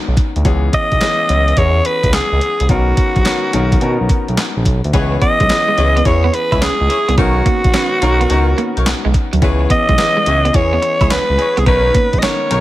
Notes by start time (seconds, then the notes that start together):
Already playing: D#3 B3 C#4 F#4 A#4
0.08 B1
0.17 kick, closed hi-hat
0.36 D2, closed hi-hat
0.45 C#2 E3 B3 C#4 G#4, kick, closed hi-hat
0.73 D#5, kick, closed hi-hat
0.92 B1, kick, closed hi-hat
1.01 E3 B3 C#4 G#4, snare, clap, closed hi-hat
1.29 C#2 E3 B3 C#4 E4, closed hi-hat
1.48 closed hi-hat
1.57 E2 E3 B3 C#4 G#4 C#5, kick, closed hi-hat
1.85 B4, closed hi-hat
2.04 C#2, kick, closed hi-hat
2.13 C#2 G#4, snare, clap, closed hi-hat
2.32 C#2
2.41 closed hi-hat
2.60 C2, closed hi-hat
2.69 B1 D#3 B3 C#4 F#4 A#4, kick, closed hi-hat
2.97 kick, closed hi-hat
3.16 A#1, kick, closed hi-hat
3.25 D#3 B3 C#4 A#4, snare, clap, closed hi-hat
3.53 B1 D#3 B3 C#4 A#4, closed hi-hat
3.72 kick, closed hi-hat
3.81 B2 D#3 B3 C#4 A#4, closed hi-hat
4.01 B1
4.09 kick, closed hi-hat
4.28 B1, closed hi-hat
4.37 snare, clap, closed hi-hat
4.57 A#1
4.65 B1, kick, closed hi-hat
4.84 D2, closed hi-hat
4.93 C#2 E3 B3 C#4 E4 G#4 B4 C#5, kick, closed hi-hat
5.12 muted clean electric guitar stroke
5.22 B3 D#5, kick, closed hi-hat
5.40 B1 G#3, kick, closed hi-hat
5.49 E3 B3 C#4 G#4, snare, clap, closed hi-hat
5.68 G#3
5.77 C#2 E3 B3 C#4 E4 G#4 B4 C#5, muted clean electric guitar stroke, closed hi-hat
5.96 B3, closed hi-hat
6.05 E2 E3 B3 C#4 E4 G#4 C#5, kick, closed hi-hat
6.24 B3
6.33 B4, muted clean electric guitar stroke, closed hi-hat
6.52 C#2 E4 G#4 C#5, kick, closed hi-hat
6.62 C#2 C#4 G#4, snare, clap, closed hi-hat
6.81 C#2
6.89 E4 G#4 C#5, muted clean electric guitar stroke, closed hi-hat
7.08 C2 B3, closed hi-hat
7.17 B1 D#3 B3 C#4 D#4 F#4 A#4 C#5, kick, closed hi-hat
7.36 muted clean electric guitar stroke
7.46 A#3, kick, closed hi-hat
7.64 A#1, kick, closed hi-hat
7.74 D#3 B3 C#4 B4, snare, clap, closed hi-hat
8.01 B1 D#3 B3 C#4 D#4 A#4 C#5, muted clean electric guitar stroke, closed hi-hat
8.21 B3, closed hi-hat
8.30 C#2 D#3 B3 C#4 D#4 A#4 C#5, closed hi-hat
8.58 A#3, closed hi-hat
8.76 B1 D#4 A#4 C#5, closed hi-hat
8.86 B1, snare, clap, closed hi-hat
9.05 B1 G#3
9.14 muted clean electric guitar stroke, kick, closed hi-hat
9.33 D2 F#3, closed hi-hat
9.42 C#2 E3 B3 C#4 E4 G#4 B4 C#5, kick, closed hi-hat
9.61 muted clean electric guitar stroke
9.70 B3 D#5, kick, closed hi-hat
9.89 B1 G#3, kick, closed hi-hat
9.98 E3 B3 C#4 G#4, snare, clap, closed hi-hat
10.17 G#3
10.26 C#2 E3 B3 C#4 E4 G#4 B4 C#5, muted clean electric guitar stroke, closed hi-hat
10.45 B3, closed hi-hat
10.54 E2 E3 B3 C#4 E4 G#4 C#5, kick, closed hi-hat
10.73 B3
10.82 muted clean electric guitar stroke, closed hi-hat
11.01 C#2 E4 G#4 C#5, kick, closed hi-hat
11.10 C#2 C#4 B4, snare, clap, closed hi-hat
11.30 C#2
11.38 E4 G#4 C#5, muted clean electric guitar stroke, closed hi-hat
11.57 C2 B3 G#4, closed hi-hat
11.66 B1 D#3 B3 C#4 D#4 A#4 B4 C#5, kick, closed hi-hat
11.85 muted clean electric guitar stroke
11.95 A#3, kick, closed hi-hat
12.13 A#1, kick, closed hi-hat
12.19 D#3 B3 C#4 D#5, snare, closed hi-hat
12.23 C#4 A#4 C#5, clap
12.50 B1 D#3 B3 C#4 D#4 A#4 C#5, muted clean electric guitar stroke, closed hi-hat